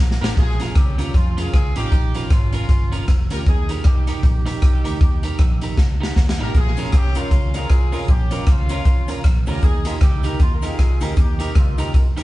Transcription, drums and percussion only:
0.11 snare
0.24 snare
0.37 kick, closed hi-hat
0.60 closed hi-hat
0.75 kick, cross-stick, closed hi-hat
0.99 closed hi-hat
1.14 kick, closed hi-hat
1.38 closed hi-hat
1.54 kick, cross-stick, closed hi-hat
1.76 closed hi-hat
1.92 kick, closed hi-hat
2.15 closed hi-hat
2.30 kick, cross-stick, closed hi-hat
2.53 closed hi-hat
2.69 kick, closed hi-hat
2.92 closed hi-hat
3.08 kick, cross-stick, closed hi-hat
3.30 closed hi-hat
3.46 kick, closed hi-hat
3.69 closed hi-hat
3.84 kick, cross-stick, closed hi-hat
4.07 closed hi-hat
4.23 kick, closed hi-hat
4.46 cross-stick, closed hi-hat
4.62 kick, cross-stick, closed hi-hat
4.85 closed hi-hat
5.01 kick, closed hi-hat
5.23 closed hi-hat
5.39 kick, cross-stick, closed hi-hat
5.61 closed hi-hat
5.78 kick, snare
6.03 snare
6.16 kick, snare
6.29 snare
6.54 kick, closed hi-hat, cabasa
6.77 closed hi-hat, cabasa
6.85 cross-stick
6.92 kick, cross-stick, closed hi-hat, cabasa
7.15 closed hi-hat, cabasa
7.31 kick, closed hi-hat, cabasa
7.54 closed hi-hat, cabasa
7.70 kick, cross-stick, closed hi-hat, cabasa
7.92 open hi-hat, cabasa
8.08 kick, closed hi-hat, cabasa
8.31 closed hi-hat, cabasa
8.47 kick, cross-stick, closed hi-hat, cabasa
8.69 closed hi-hat, cabasa
8.85 kick, closed hi-hat, cabasa
9.08 closed hi-hat, cabasa
9.24 kick, cross-stick, closed hi-hat, cabasa
9.46 open hi-hat, cabasa
9.62 kick, closed hi-hat, cabasa
9.85 closed hi-hat, cabasa
10.01 kick, cross-stick, closed hi-hat, cabasa
10.23 closed hi-hat, cabasa
10.39 kick, closed hi-hat, cabasa
10.62 closed hi-hat, cabasa
10.78 kick, cross-stick, closed hi-hat, cabasa
11.01 closed hi-hat, cabasa
11.16 kick, closed hi-hat, cabasa
11.40 closed hi-hat, cabasa
11.55 kick, cross-stick, closed hi-hat, cabasa
11.78 closed hi-hat, cabasa
11.94 kick, closed hi-hat, cabasa
12.17 cross-stick, closed hi-hat, cabasa

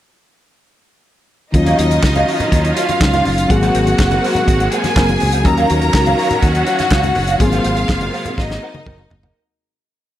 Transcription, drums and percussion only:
1.54 kick, closed hi-hat
1.66 closed hi-hat, muted conga, high conga
1.79 closed hi-hat
1.90 closed hi-hat, high conga
2.03 kick, snare, clap
2.15 closed hi-hat, high conga
2.28 open hi-hat
2.40 closed hi-hat, high conga, low conga
2.52 kick, closed hi-hat, muted conga
2.65 closed hi-hat, muted conga
2.77 closed hi-hat
2.89 closed hi-hat, high conga
3.01 kick, snare, clap, muted conga
3.14 closed hi-hat, muted conga, high conga
3.25 open hi-hat, low conga
3.38 closed hi-hat
3.50 kick, closed hi-hat
3.62 closed hi-hat, high conga
3.75 closed hi-hat
3.87 closed hi-hat, high conga
3.99 kick, snare, clap
4.11 closed hi-hat, muted conga, high conga
4.24 open hi-hat
4.35 closed hi-hat, high conga, low conga
4.48 kick, closed hi-hat, muted conga
4.60 closed hi-hat, muted conga
4.72 closed hi-hat
4.84 snare, closed hi-hat, high conga
4.96 kick, snare, clap
5.09 closed hi-hat, high conga
5.20 open hi-hat, low conga
5.32 closed hi-hat
5.45 kick, closed hi-hat
5.57 closed hi-hat, high conga
5.70 closed hi-hat
5.81 closed hi-hat, high conga
5.94 kick, snare, clap
6.06 closed hi-hat, high conga
6.19 open hi-hat
6.31 closed hi-hat, high conga, low conga
6.42 kick, closed hi-hat, muted conga
6.55 closed hi-hat, muted conga
6.66 closed hi-hat
6.79 snare, closed hi-hat, high conga
6.91 kick, snare, clap
7.03 closed hi-hat, muted conga, high conga
7.15 open hi-hat, low conga
7.27 closed hi-hat
7.40 kick, closed hi-hat, muted conga
7.52 closed hi-hat, muted conga, high conga
7.64 closed hi-hat
7.76 closed hi-hat, high conga
7.89 kick, snare, clap
8.01 closed hi-hat, muted conga, high conga
8.14 open hi-hat
8.25 closed hi-hat, high conga, low conga
8.38 kick, snare, muted conga
8.50 snare, muted conga
8.75 high tom, high conga
8.86 kick, mid tom
8.98 muted conga, high conga
9.10 floor tom, low conga
9.23 floor tom

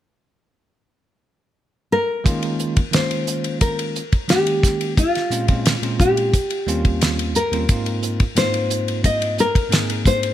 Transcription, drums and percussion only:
2.26 kick, hi-hat pedal, ride
2.43 ride
2.59 hi-hat pedal
2.77 kick, ride
2.93 snare, hi-hat pedal, ride
3.11 ride
3.27 hi-hat pedal
3.44 ride
3.61 kick, hi-hat pedal, ride
3.79 ride
3.95 hi-hat pedal
4.12 kick, ride
4.29 snare, hi-hat pedal, ride
4.47 ride
4.63 kick, snare, hi-hat pedal
4.81 ride
4.97 kick, hi-hat pedal, ride
5.15 snare, ride
5.31 hi-hat pedal
5.48 kick, ride
5.66 snare, hi-hat pedal, ride
5.83 ride
6.00 kick, hi-hat pedal
6.17 ride
6.34 kick, hi-hat pedal, ride
6.50 ride
6.68 hi-hat pedal
6.85 kick, ride
7.01 snare, hi-hat pedal, ride
7.19 ride
7.35 hi-hat pedal
7.53 ride
7.69 kick, hi-hat pedal, ride
7.86 ride
8.03 hi-hat pedal
8.20 kick, ride
8.36 snare, hi-hat pedal, ride
8.54 ride
8.70 hi-hat pedal
8.88 ride
9.04 kick, hi-hat pedal, ride
9.22 ride
9.38 hi-hat pedal
9.55 kick, ride
9.72 snare, hi-hat pedal, ride
9.90 ride
10.05 kick, hi-hat pedal
10.23 ride

